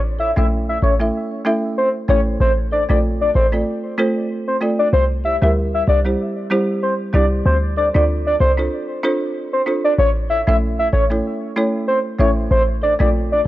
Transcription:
0.00 0.33 A1 loud
0.19 0.26 A4 medium
0.19 0.27 C#5 medium
0.19 0.31 E5 medium
0.36 0.79 A#1 medium
0.36 0.48 A3 medium
0.36 0.48 C#4 medium
0.36 0.48 E4 medium
0.36 0.48 A4 medium
0.36 0.47 E5 medium
0.36 0.49 E5 medium
0.69 0.78 E5 medium
0.82 1.11 A1 medium
0.82 0.89 A4 medium
0.82 0.94 C#5 medium
0.82 0.90 E5 medium
1.00 1.11 A3 medium
1.00 1.11 C#4 medium
1.00 1.11 E4 medium
1.00 1.12 A4 medium
1.00 1.12 E5 medium
1.45 1.59 A3 medium
1.45 1.60 C#4 medium
1.45 1.60 E4 medium
1.45 1.60 A4 medium
1.45 1.60 E5 loud
1.78 1.89 C5 medium
2.08 2.37 A1 loud
2.08 2.23 A3 medium
2.08 2.23 C#4 medium
2.08 2.23 E4 medium
2.08 2.23 A4 medium
2.08 2.21 C#5 medium
2.08 2.24 C#5 medium
2.40 2.86 A1 loud
2.40 2.52 C5 loud
2.71 2.79 A4 medium
2.71 2.80 C5 medium
2.71 2.84 D5 medium
2.89 3.31 A#1 medium
2.89 3.00 A3 medium
2.89 3.01 C4 medium
2.89 3.01 F4 medium
2.89 3.01 A4 medium
2.89 2.99 D5 medium
2.89 3.01 D5 medium
3.21 3.30 D5 medium
3.34 3.64 A1 loud
3.34 3.42 A4 medium
3.34 3.47 C5 medium
3.34 3.43 D5 medium
3.52 3.64 A3 medium
3.52 3.64 C4 medium
3.52 3.64 F4 medium
3.52 3.64 A4 medium
3.52 3.64 D5 medium
3.98 4.12 A3 loud
3.98 4.12 C4 medium
3.98 4.13 F4 medium
3.98 4.13 A4 medium
3.98 4.13 C5 loud
4.48 4.57 C5 medium
4.61 4.75 A3 medium
4.61 4.76 C4 medium
4.61 4.76 F4 medium
4.61 4.76 A4 medium
4.61 4.76 D5 medium
4.79 4.88 D5 medium
4.93 5.38 C2 loud
4.93 5.05 C5 loud
5.24 5.31 G4 medium
5.24 5.32 C5 medium
5.24 5.36 E5 medium
5.42 5.84 D2 medium
5.42 5.53 G3 medium
5.42 5.53 C4 medium
5.42 5.54 E4 medium
5.42 5.54 G4 medium
5.42 5.54 A#4 medium
5.42 5.52 E5 medium
5.74 5.83 E5 medium
5.87 6.16 C2 medium
5.87 5.95 G4 medium
5.87 5.95 C5 medium
5.87 6.00 D5 medium
6.05 6.16 G3 medium
6.05 6.16 C4 medium
6.05 6.17 E4 medium
6.05 6.17 G4 medium
6.05 6.17 C5 medium
6.50 6.65 G3 medium
6.50 6.65 C4 medium
6.50 6.65 E4 medium
6.50 6.65 G4 medium
6.50 6.66 C5 loud
6.83 6.94 C5 medium
7.13 7.43 C2 loud
7.13 7.28 G3 medium
7.13 7.28 C4 medium
7.13 7.28 E4 medium
7.13 7.28 G4 medium
7.13 7.26 D5 medium
7.13 7.29 D5 medium
7.46 7.91 D2 loud
7.46 7.57 C5 loud
7.77 7.84 A4 medium
7.77 7.85 C5 medium
7.77 7.89 D5 medium
7.94 8.36 D2 medium
7.94 8.06 C4 medium
7.94 8.06 D4 medium
7.94 8.06 F4 medium
7.94 8.07 A4 medium
7.94 8.04 D5 medium
7.94 8.07 D5 medium
8.27 8.36 D5 medium
8.40 8.69 C2 medium
8.40 8.47 A4 medium
8.40 8.52 C5 medium
8.40 8.48 D5 medium
8.58 8.69 C4 medium
8.58 8.69 D4 medium
8.58 8.69 F4 medium
8.58 8.70 A4 medium
8.58 8.70 C5 medium
9.03 9.18 C4 medium
9.03 9.18 D4 medium
9.03 9.18 F4 medium
9.03 9.18 A4 medium
9.03 9.18 C5 loud
9.53 9.62 C5 medium
9.66 9.81 C4 medium
9.66 9.81 D4 medium
9.66 9.81 F4 medium
9.66 9.81 A4 medium
9.66 9.81 C5 medium
9.84 9.94 D5 medium
9.98 10.44 A1 loud
9.98 10.10 C#5 loud
10.29 10.37 A4 medium
10.29 10.38 C#5 medium
10.29 10.41 E5 medium
10.47 10.89 A#1 medium
10.47 10.58 A3 medium
10.47 10.59 C#4 medium
10.47 10.59 E4 medium
10.47 10.59 A4 medium
10.47 10.57 E5 medium
10.47 10.59 E5 medium
10.79 10.88 E5 medium
10.93 11.22 A1 medium
10.93 11.00 A4 medium
10.93 11.04 C#5 medium
10.93 11.01 C#5 medium
11.10 11.22 A3 medium
11.10 11.22 C#4 medium
11.10 11.22 E4 medium
11.10 11.22 A4 medium
11.10 11.22 C#5 medium
11.56 11.70 A3 medium
11.56 11.70 C#4 medium
11.56 11.71 E4 medium
11.56 11.71 A4 medium
11.56 11.71 C#5 loud
11.88 11.99 C5 medium
12.19 12.48 A1 medium
12.19 12.33 A3 medium
12.19 12.33 C#4 medium
12.19 12.34 E4 medium
12.19 12.34 A4 medium
12.19 12.31 C#5 medium
12.19 12.34 E5 medium
12.51 12.96 A1 loud
12.51 12.63 C5 loud
12.82 12.89 A4 medium
12.82 12.90 C5 medium
12.82 12.94 D5 medium
12.99 13.42 A#1 medium
12.99 13.11 A3 medium
12.99 13.11 C4 medium
12.99 13.11 F4 medium
12.99 13.12 A4 medium
12.99 13.09 D5 medium
12.99 13.12 D5 medium
13.32 13.41 D5 medium

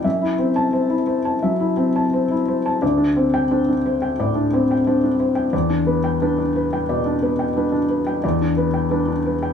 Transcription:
0.04 1.39 F#2 soft
0.04 0.32 E5 soft
0.22 0.50 E4 soft
0.39 0.94 C4 soft
0.39 0.67 C5 soft
0.56 0.84 A5 medium
0.73 1.01 C5 soft
0.90 1.18 E4 soft
1.07 1.35 C5 soft
1.25 1.53 A5 soft
1.43 1.99 F#3 soft
1.43 1.70 E5 soft
1.60 1.88 E4 soft
1.77 2.33 C4 soft
1.77 2.05 C5 soft
1.96 2.23 A5 soft
2.13 2.41 C5 soft
2.31 2.58 E4 soft
2.48 2.75 C5 soft
2.66 2.82 A5 soft
2.82 4.15 D2 medium
2.82 3.09 D5 soft
2.98 3.26 D4 soft
3.16 3.71 C4 soft
3.16 3.44 C5 soft
3.34 3.61 G5 medium
3.51 3.67 D4 soft
3.51 3.78 C5 soft
3.69 3.95 D4 soft
3.86 4.12 C5 soft
4.02 4.29 G5 soft
4.19 4.73 A2 soft
4.19 4.46 D5 soft
4.35 4.62 D4 soft
4.53 5.06 C4 soft
4.53 4.80 C5 soft
4.71 4.97 G5 soft
4.87 5.02 D4 soft
4.87 5.13 C5 soft
5.04 5.30 D4 soft
5.20 5.46 C5 soft
5.35 5.52 G5 soft
5.53 6.85 E2 medium
5.53 5.80 D5 medium
5.69 5.97 D4 soft
5.87 6.42 B3 soft
5.87 6.14 B4 soft
6.04 6.31 G5 medium
6.22 6.37 D4 soft
6.22 6.49 B4 medium
6.38 6.65 D4 soft
6.56 6.82 B4 soft
6.73 6.99 G5 soft
6.89 7.42 B2 soft
6.89 7.16 D5 medium
7.06 7.32 D4 soft
7.23 7.76 B3 soft
7.23 7.49 B4 soft
7.39 7.66 G5 soft
7.56 7.70 D4 soft
7.56 7.83 B4 soft
7.72 7.99 D4 soft
7.89 8.17 B4 soft
8.07 8.33 G5 soft
8.24 9.53 E2 medium
8.24 8.50 D5 medium
8.41 8.67 D4 soft
8.57 9.10 B3 soft
8.57 8.84 B4 soft
8.74 9.00 G5 soft
8.91 9.06 D4 soft
8.91 9.17 B4 medium
9.08 9.35 D4 soft
9.26 9.52 B4 soft
9.43 9.53 G5 soft

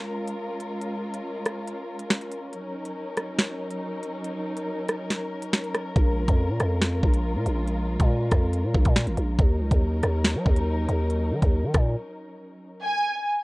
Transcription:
0.00 2.50 G#3 medium
0.00 9.35 C#4 medium
0.00 2.50 F4 medium
0.00 2.49 A#4 medium
0.28 closed hi-hat medium
0.60 closed hi-hat medium
0.82 closed hi-hat medium
1.14 closed hi-hat medium
1.46 cross-stick medium
1.46 closed hi-hat medium
1.67 closed hi-hat medium
1.99 closed hi-hat medium
2.10 finger snap loud
2.10 snare loud
2.21 closed hi-hat medium
2.32 closed hi-hat medium
2.53 5.92 F#3 medium
2.53 5.92 D#4 medium
2.53 9.35 A#4 medium
2.53 closed hi-hat medium
2.85 closed hi-hat medium
3.17 cross-stick medium
3.17 closed hi-hat medium
3.39 finger snap medium
3.39 snare loud
3.39 closed hi-hat medium
3.71 closed hi-hat medium
4.03 closed hi-hat medium
4.24 closed hi-hat medium
4.57 closed hi-hat medium
4.88 cross-stick medium
4.88 closed hi-hat medium
5.10 snare medium
5.10 closed hi-hat medium
5.42 closed hi-hat medium
5.53 finger snap loud
5.53 snare loud
5.64 closed hi-hat soft
5.75 cross-stick loud
5.75 closed hi-hat medium
5.96 6.27 A#1 loud
5.96 9.35 G#3 medium
5.96 9.35 F4 medium
5.96 kick loud
5.96 closed hi-hat medium
6.28 6.51 F2 loud
6.28 kick medium
6.28 closed hi-hat medium
6.49 6.60 A#2 loud
6.60 7.01 F2 loud
6.60 cross-stick medium
6.60 closed hi-hat medium
6.82 finger snap medium
6.82 snare loud
6.82 closed hi-hat medium
7.03 7.37 A#1 loud
7.03 kick loud
7.13 closed hi-hat medium
7.35 7.45 A#2 loud
7.46 7.97 A#1 loud
7.46 closed hi-hat medium
7.67 closed hi-hat medium
8.00 8.30 A#2 loud
8.00 kick medium
8.00 closed hi-hat medium
8.31 8.65 F2 loud
8.31 kick medium
8.31 cross-stick medium
8.31 closed hi-hat medium
8.53 closed hi-hat medium
8.64 8.74 A#2 loud
8.74 8.85 A#1 loud
8.74 kick loud
8.85 9.08 A#2 loud
8.85 kick medium
8.85 closed hi-hat medium
8.96 finger snap loud
8.96 snare loud
9.07 9.17 G#1 loud
9.07 closed hi-hat medium
9.17 9.38 A#1 loud
9.17 closed hi-hat medium
9.39 9.62 D#2 loud
9.39 12.78 F#3 medium
9.39 12.78 C#4 medium
9.39 12.78 D#4 medium
9.39 12.78 A#4 medium
9.39 kick loud
9.39 closed hi-hat medium
9.60 9.70 C#2 loud
9.71 10.02 D#2 loud
9.71 kick medium
9.71 closed hi-hat medium
10.03 10.37 D#2 loud
10.03 cross-stick medium
10.03 closed hi-hat medium
10.24 finger snap medium
10.24 snare loud
10.24 closed hi-hat medium
10.35 10.45 F#3 loud
10.46 10.87 D#2 loud
10.46 kick loud
10.56 closed hi-hat medium
10.89 11.33 D#2 loud
10.89 closed hi-hat medium
11.10 closed hi-hat medium
11.32 11.42 D#3 loud
11.42 11.65 D#2 loud
11.42 kick medium
11.42 closed hi-hat medium
11.64 11.74 D#3 loud
11.74 11.96 A#2 loud
11.74 kick medium
11.74 cross-stick medium
11.74 closed hi-hat medium
12.82 13.22 G#5 loud

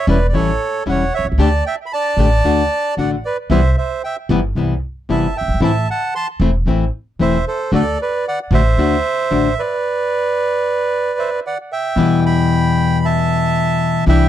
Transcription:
0.07 0.29 E1 medium
0.07 0.16 E3 medium
0.07 0.17 G3 medium
0.07 0.17 C#4 medium
0.07 0.17 E4 medium
0.07 0.27 B4 medium
0.07 0.27 D5 medium
0.29 0.35 D5 medium
0.33 0.56 A1 medium
0.33 0.51 E3 medium
0.33 0.51 G3 medium
0.33 0.51 C#4 medium
0.33 0.51 E4 medium
0.33 0.84 A4 medium
0.33 0.83 C#5 medium
0.86 1.08 E1 medium
0.86 1.03 E3 medium
0.86 1.03 G3 soft
0.86 1.04 C#4 medium
0.86 1.03 E4 medium
0.86 1.15 F#5 medium
0.91 1.13 C#5 medium
1.14 1.27 C#5 medium
1.14 1.26 E5 medium
1.19 1.24 B1 soft
1.25 1.31 C2 medium
1.32 1.37 C#2 medium
1.38 1.61 D2 medium
1.38 1.48 D3 medium
1.38 1.48 A3 medium
1.38 1.48 D4 medium
1.38 1.48 G4 medium
1.38 1.65 D5 medium
1.38 1.64 A5 medium
1.66 1.76 E5 medium
1.66 1.75 G5 medium
1.86 1.92 B5 medium
1.93 2.95 D5 medium
1.93 2.94 A5 medium
2.17 2.40 A1 medium
2.17 2.27 D3 medium
2.17 2.27 A3 medium
2.17 2.28 D4 medium
2.17 2.28 G4 medium
2.44 2.67 D2 medium
2.44 2.62 D3 medium
2.44 2.62 A3 medium
2.44 2.62 D4 medium
2.44 2.62 F#4 medium
2.97 3.20 A1 soft
2.97 3.15 D3 medium
2.97 3.15 A3 medium
2.97 3.15 D4 medium
2.97 3.15 F#4 medium
2.97 3.11 D5 medium
2.97 3.10 F#5 medium
3.25 3.37 B4 medium
3.25 3.37 D5 medium
3.50 3.72 C2 medium
3.50 3.59 C3 medium
3.50 3.60 E3 medium
3.50 3.60 G3 medium
3.50 3.60 B3 medium
3.50 3.60 E4 medium
3.50 3.76 C5 medium
3.50 3.76 E5 medium
3.78 4.02 C5 medium
3.78 4.02 E5 medium
4.04 4.17 E5 medium
4.04 4.16 G5 medium
4.29 4.52 G1 medium
4.29 4.39 C3 medium
4.29 4.39 E3 medium
4.29 4.39 G3 medium
4.29 4.39 B3 medium
4.29 4.40 E4 medium
4.55 4.78 C2 medium
4.55 4.73 C3 medium
4.55 4.73 E3 medium
4.55 4.74 G3 medium
4.55 4.74 B3 medium
4.55 4.74 E4 medium
5.09 5.31 G1 soft
5.09 5.26 C3 soft
5.09 5.26 E3 medium
5.09 5.26 G3 medium
5.09 5.26 B3 medium
5.09 5.27 E4 medium
5.09 5.35 E5 soft
5.09 5.37 A5 medium
5.37 5.61 E5 medium
5.37 5.61 G5 medium
5.41 5.47 F#1 soft
5.48 5.54 G1 medium
5.54 5.60 G#1 medium
5.61 5.83 A1 medium
5.61 5.70 E3 medium
5.61 5.71 A3 medium
5.61 5.71 C4 medium
5.61 5.71 E4 medium
5.61 5.87 E5 medium
5.61 5.89 A5 medium
5.91 6.14 F#5 medium
5.91 6.14 A5 medium
6.15 6.28 A5 medium
6.15 6.27 C6 medium
6.40 6.62 E1 medium
6.40 6.50 E3 medium
6.40 6.50 A3 medium
6.40 6.50 C4 medium
6.40 6.50 E4 medium
6.66 6.89 A1 medium
6.66 6.84 E3 medium
6.66 6.84 A3 medium
6.66 6.84 C4 medium
6.66 6.84 E4 medium
7.19 7.42 E1 soft
7.19 7.37 E3 medium
7.19 7.37 A3 medium
7.19 7.37 C4 medium
7.19 7.37 E4 medium
7.19 7.45 C5 medium
7.19 7.45 E5 medium
7.48 7.71 A4 medium
7.48 7.71 C5 medium
7.72 7.94 D2 medium
7.72 7.81 D3 medium
7.72 7.81 A3 medium
7.72 7.82 D4 medium
7.72 7.82 F#4 medium
7.72 7.98 A4 medium
7.72 8.00 D5 medium
8.02 8.25 B4 medium
8.02 8.26 D5 medium
8.28 8.39 D5 medium
8.28 8.39 F#5 medium
8.51 8.73 A1 loud
8.51 8.61 D3 medium
8.51 8.61 A3 medium
8.51 8.61 D4 medium
8.51 8.61 F#4 medium
8.51 9.54 C5 medium
8.51 9.62 E5 loud
8.77 9.00 D2 medium
8.77 8.95 D3 medium
8.77 8.95 A3 medium
8.77 8.95 D4 medium
8.77 8.96 F#4 medium
9.31 9.53 A1 medium
9.31 9.48 D3 medium
9.31 9.48 A3 medium
9.31 9.48 D4 medium
9.31 9.48 F#4 medium
9.59 11.40 B4 medium
9.59 11.40 D5 medium
11.19 11.30 C5 medium
11.19 11.30 E5 medium
11.46 11.58 D5 medium
11.46 11.58 F#5 medium
11.72 12.20 E5 medium
11.72 12.24 G5 medium
11.96 13.96 E2 medium
11.96 14.06 B2 medium
11.96 14.07 E3 medium
11.96 14.07 G3 medium
11.96 14.07 B3 medium
11.96 14.09 E4 medium
12.26 12.99 G5 medium
12.26 13.06 B5 medium
13.05 14.05 E5 medium
13.05 14.04 A5 medium
14.06 14.29 C2 medium
14.06 14.29 C3 medium
14.06 14.29 E3 medium
14.06 14.29 G3 medium
14.06 14.29 D4 medium
14.06 14.29 E4 medium
14.06 14.29 E5 medium
14.06 14.29 G5 medium

